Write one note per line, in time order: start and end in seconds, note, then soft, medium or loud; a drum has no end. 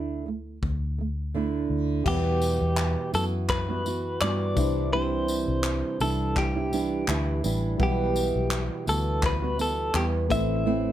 0.00 0.59 D2 medium
0.00 0.25 D3 medium
0.00 0.27 A3 medium
0.00 0.27 D4 medium
0.00 0.26 E4 medium
0.26 0.56 D3 medium
0.26 0.57 A3 medium
0.63 1.66 D2 medium
0.63 kick medium
0.98 1.28 D3 medium
0.98 1.29 A3 medium
1.34 2.06 D3 medium
1.34 2.06 A3 medium
1.34 2.07 D4 medium
1.34 3.15 E4 medium
1.70 2.03 D2 medium
2.04 2.58 E2 medium
2.04 3.14 E2 medium
2.04 3.14 B2 medium
2.04 3.13 E3 medium
2.04 3.19 G3 medium
2.04 3.14 B3 medium
2.04 4.53 E4 medium
2.04 4.52 G4 medium
2.04 3.11 G4 medium
2.04 4.53 F#5 medium
2.04 kick loud
2.04 crash medium
2.08 4.54 B4 medium
2.42 tambourine medium
2.61 2.95 E2 medium
2.77 clap loud
3.13 4.17 F#2 medium
3.13 3.69 E3 medium
3.13 3.68 B3 medium
3.13 3.68 F#4 medium
3.13 3.24 A4 medium
3.13 tambourine medium
3.49 4.21 B4 medium
3.49 kick loud
3.49 clap medium
3.69 3.84 E3 soft
3.69 3.86 G3 soft
3.69 3.85 B3 medium
3.69 3.85 F#4 medium
3.85 4.20 E3 medium
3.85 4.22 B3 medium
3.85 4.22 F#4 medium
3.85 tambourine medium
4.21 4.54 G2 medium
4.21 4.56 E3 medium
4.21 4.56 G3 medium
4.21 4.58 B3 medium
4.21 4.58 F#4 medium
4.21 4.93 D5 loud
4.21 clap loud
4.54 5.44 C2 loud
4.54 4.92 E3 medium
4.54 7.38 G3 medium
4.54 4.92 G3 medium
4.54 7.39 D4 medium
4.54 7.40 E4 medium
4.54 7.40 C5 medium
4.54 kick loud
4.54 tambourine medium
4.59 4.92 D4 medium
4.59 4.93 E4 medium
4.92 6.00 C3 medium
4.92 5.99 E3 medium
4.92 6.01 G3 medium
4.92 6.01 D4 medium
4.92 6.02 E4 medium
4.92 6.01 C5 loud
5.28 tambourine medium
5.48 5.81 C2 medium
5.64 clap loud
6.00 7.04 C2 medium
6.00 6.56 E3 medium
6.00 6.56 G3 medium
6.00 6.56 D4 medium
6.00 6.55 E4 medium
6.00 6.38 A4 medium
6.00 tambourine medium
6.36 7.41 G4 medium
6.36 kick loud
6.36 clap medium
6.56 6.71 G3 soft
6.56 6.72 D4 soft
6.56 6.72 E4 medium
6.72 7.06 E3 medium
6.72 7.07 G3 medium
6.72 7.08 D4 medium
6.72 7.09 E4 medium
6.72 tambourine medium
7.07 7.41 D2 medium
7.07 7.42 E3 medium
7.07 7.43 G3 medium
7.07 7.44 D4 medium
7.07 7.44 E4 medium
7.07 clap loud
7.43 7.77 A1 medium
7.43 7.78 E3 medium
7.43 7.79 G3 medium
7.43 7.80 D4 medium
7.43 7.80 E4 medium
7.43 tambourine medium
7.78 8.31 B1 loud
7.78 8.87 B2 medium
7.78 8.86 E3 medium
7.78 10.25 G3 medium
7.78 8.86 G3 medium
7.78 8.87 B3 medium
7.78 10.26 E4 medium
7.78 10.27 F#5 medium
7.78 kick loud
7.82 8.85 G4 medium
7.82 10.27 B4 medium
8.16 tambourine medium
8.36 8.68 B1 medium
8.51 clap loud
8.86 9.91 D2 medium
8.86 9.42 E3 medium
8.86 9.43 G3 medium
8.86 9.42 B3 medium
8.86 9.41 F#4 medium
8.86 9.25 A4 medium
8.86 tambourine medium
9.23 9.61 B4 loud
9.23 kick loud
9.23 clap medium
9.42 9.58 G3 soft
9.42 9.58 B3 medium
9.42 9.58 F#4 medium
9.58 9.93 E3 medium
9.58 9.94 G3 medium
9.58 9.94 B3 medium
9.58 9.95 F#4 medium
9.58 9.97 A4 medium
9.58 tambourine medium
9.94 10.27 E2 medium
9.94 10.28 E3 medium
9.94 10.30 G3 medium
9.94 10.31 B3 medium
9.94 10.06 G4 medium
9.94 clap loud
10.28 10.92 A1 loud
10.28 10.65 E3 medium
10.28 10.92 A3 medium
10.28 10.65 A3 medium
10.28 10.92 C4 medium
10.28 10.66 C4 medium
10.28 10.92 E4 medium
10.28 10.66 E4 medium
10.28 10.92 C5 medium
10.28 10.92 E5 medium
10.28 kick loud
10.28 tambourine medium
10.65 10.92 A2 medium
10.65 10.92 E3 medium
10.65 10.92 A3 medium
10.65 10.92 C4 medium
10.65 10.92 E4 medium